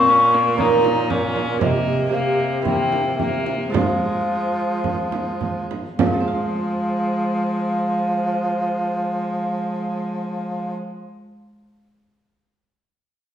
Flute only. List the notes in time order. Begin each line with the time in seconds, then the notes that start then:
Already playing: C#6
0.59 A#5
1.62 D#5
2.14 F5
2.65 G5
3.18 E5
3.45 E5
3.72 F5
5.98 F5